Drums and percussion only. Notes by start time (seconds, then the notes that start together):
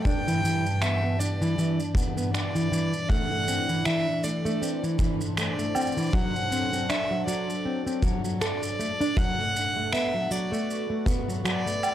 0.05 kick, shaker
0.28 shaker
0.45 shaker
0.66 shaker
0.82 finger snap, shaker
1.21 shaker
1.42 shaker
1.59 shaker
1.80 shaker
1.95 kick, shaker
2.18 shaker
2.34 finger snap, shaker
2.56 shaker
2.73 shaker
2.93 shaker
3.10 kick, shaker
3.48 shaker
3.69 shaker
3.85 finger snap, shaker
4.24 shaker
4.46 shaker
4.63 shaker
4.84 shaker
4.99 kick, shaker
5.21 shaker
5.37 finger snap, shaker
5.59 shaker
5.75 low woodblock, shaker
5.81 shaker
5.87 shaker
5.92 shaker
5.97 shaker
6.02 shaker
6.06 shaker
6.10 kick, shaker
6.14 shaker
6.36 shaker
6.52 shaker
6.73 shaker
6.90 finger snap, shaker
7.28 shaker
7.50 shaker
7.87 shaker
8.03 kick, shaker
8.25 shaker
8.41 finger snap, shaker
8.63 shaker
8.80 shaker
9.01 shaker
9.17 kick, shaker
9.56 shaker
9.93 finger snap, shaker
10.31 shaker
10.54 shaker
10.70 shaker
11.06 kick, shaker
11.30 shaker
11.45 finger snap, shaker
11.67 shaker
11.83 low woodblock, shaker